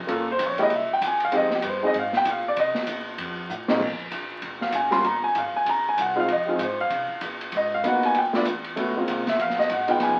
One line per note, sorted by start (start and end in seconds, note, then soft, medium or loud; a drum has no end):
0.07 0.38 G1 medium
0.07 0.25 A#3 medium
0.07 0.25 C#4 medium
0.07 0.25 F4 medium
0.07 0.26 A4 medium
0.07 kick soft
0.07 ride medium
0.31 0.41 C5 loud
0.39 0.69 A#1 medium
0.39 kick soft
0.39 hi-hat pedal medium
0.39 ride medium
0.46 0.61 C#5 medium
0.58 0.69 G#3 medium
0.58 0.69 A#3 medium
0.58 0.70 E4 medium
0.58 0.70 G4 medium
0.58 ride soft
0.63 0.72 D#5 loud
0.70 0.88 C2 medium
0.70 kick soft
0.70 ride medium
0.76 0.91 E5 medium
0.89 muted upright bass stroke soft
0.93 1.03 G5 loud
1.01 1.31 E2 medium
1.01 kick soft
1.01 hi-hat pedal medium
1.01 ride medium
1.07 1.23 G#5 loud
1.20 ride soft
1.25 1.34 F5 loud
1.31 1.62 F2 medium
1.31 1.49 G#3 medium
1.31 1.49 C4 medium
1.31 1.50 D#4 medium
1.31 1.50 G4 medium
1.31 kick soft
1.31 ride medium
1.37 1.53 D#5 medium
1.50 snare soft
1.55 1.65 G4 medium
1.62 1.93 G2 medium
1.62 1.65 B4 medium
1.62 kick soft
1.62 hi-hat pedal medium
1.62 ride medium
1.68 1.84 C5 medium
1.82 1.93 G#3 medium
1.82 1.94 C4 medium
1.82 1.94 D#4 medium
1.82 1.94 G#4 medium
1.87 1.96 D#5 loud
1.94 2.24 G#2 medium
1.94 kick soft
1.94 ride medium
1.99 2.15 F5 medium
2.13 snare soft
2.17 2.27 G5 loud
2.25 2.55 A#2 medium
2.25 kick soft
2.25 hi-hat pedal medium
2.25 ride medium
2.31 2.47 F5 medium
2.48 2.58 D5 loud
2.56 2.74 C3 loud
2.56 3.04 D#5 loud
2.56 kick soft
2.56 ride medium
2.75 muted upright bass stroke soft
2.75 snare medium
2.87 3.17 A#2 medium
2.87 kick soft
2.87 hi-hat pedal medium
2.87 ride medium
3.18 3.48 F2 medium
3.18 kick soft
3.18 ride medium
3.49 3.79 A2 medium
3.49 hi-hat pedal medium
3.68 3.79 A#2 medium
3.68 3.79 G#3 medium
3.68 3.80 C4 medium
3.68 3.80 C#4 medium
3.68 3.80 D#4 medium
3.68 snare medium
3.80 4.11 F2 medium
3.80 kick medium
3.80 crash medium
4.11 4.41 A#1 medium
4.11 kick soft
4.11 hi-hat pedal medium
4.11 ride medium
4.42 4.72 F1 medium
4.42 kick soft
4.42 ride medium
4.61 4.74 F5 medium
4.61 snare soft
4.72 5.03 F#1 medium
4.72 4.93 G#5 medium
4.72 kick soft
4.72 hi-hat pedal medium
4.72 ride medium
4.90 5.02 G3 medium
4.90 5.03 A#3 medium
4.90 5.03 C#4 medium
4.90 5.03 F4 medium
4.90 5.04 C6 loud
4.90 snare soft
4.90 ride soft
5.03 5.34 G1 medium
5.03 5.23 A#5 medium
5.03 kick soft
5.03 ride medium
5.24 5.35 G#5 loud
5.35 5.52 G#1 medium
5.35 5.55 F5 medium
5.35 kick soft
5.35 hi-hat pedal medium
5.35 ride medium
5.52 muted upright bass stroke soft
5.56 5.67 G#5 loud
5.65 5.96 A#1 medium
5.65 kick soft
5.65 ride medium
5.69 5.86 A#5 loud
5.89 5.99 G#5 medium
5.97 6.27 C2 medium
5.97 kick soft
5.97 hi-hat pedal medium
5.97 ride medium
6.01 6.18 F#5 medium
6.15 6.27 G#3 medium
6.15 6.27 C4 medium
6.15 6.27 D#4 medium
6.15 6.27 F4 medium
6.20 6.30 F5 medium
6.28 6.58 F2 medium
6.28 kick soft
6.28 ride medium
6.32 6.49 D#5 medium
6.46 6.59 G#3 medium
6.46 6.59 C4 medium
6.46 6.59 D#4 medium
6.46 6.59 F4 medium
6.46 6.47 G4 soft
6.46 6.60 G#4 medium
6.58 6.89 G#2 medium
6.58 kick soft
6.58 hi-hat pedal soft
6.58 ride medium
6.63 6.80 C5 medium
6.81 7.20 F5 loud
6.90 7.08 C3 medium
6.90 kick soft
6.90 ride medium
7.08 muted upright bass stroke soft
7.21 7.52 A#2 medium
7.21 kick soft
7.21 hi-hat pedal medium
7.21 ride medium
7.41 ride soft
7.52 7.82 G#2 medium
7.52 kick soft
7.52 ride medium
7.57 7.73 D#5 medium
7.75 7.85 F5 loud
7.83 8.00 F#2 medium
7.83 8.15 A#3 medium
7.83 8.15 B3 medium
7.83 8.15 D#4 medium
7.83 8.15 F#4 medium
7.83 kick soft
7.83 hi-hat pedal soft
7.83 ride medium
7.88 8.04 F#5 medium
8.01 muted upright bass stroke soft
8.01 ride soft
8.05 8.16 G#5 loud
8.14 8.45 D2 medium
8.14 kick soft
8.14 ride medium
8.18 8.35 G5 medium
8.33 8.44 A3 medium
8.33 8.44 B3 medium
8.33 8.45 D4 medium
8.33 8.45 F4 medium
8.33 8.43 D5 medium
8.33 snare medium
8.45 8.76 E2 medium
8.45 kick soft
8.45 hi-hat pedal medium
8.45 ride medium
8.64 ride soft
8.76 9.06 C#2 medium
8.76 8.93 A3 medium
8.76 8.93 B3 medium
8.76 8.94 C#4 medium
8.76 8.94 F#4 medium
8.76 kick soft
8.76 ride medium
8.96 9.23 G#3 medium
8.96 9.23 A#3 medium
8.96 9.23 C4 medium
8.96 9.24 F4 medium
9.07 9.38 C2 medium
9.07 kick soft
9.07 hi-hat pedal medium
9.07 ride medium
9.27 9.40 E5 medium
9.27 snare soft
9.27 ride soft
9.38 9.68 A#1 medium
9.38 9.58 F5 medium
9.38 kick soft
9.38 ride medium
9.50 snare soft
9.59 9.70 D#5 medium
9.59 snare soft
9.69 9.99 G#1 medium
9.69 9.90 F#5 medium
9.69 kick soft
9.69 hi-hat pedal soft
9.69 ride medium
9.87 10.20 G#3 medium
9.87 10.20 B3 medium
9.87 10.20 D#4 medium
9.87 10.20 F4 medium
9.87 10.01 G5 loud
9.87 ride soft
10.00 10.20 F1 medium
10.00 10.20 G#5 loud
10.00 kick soft
10.00 snare soft
10.00 ride medium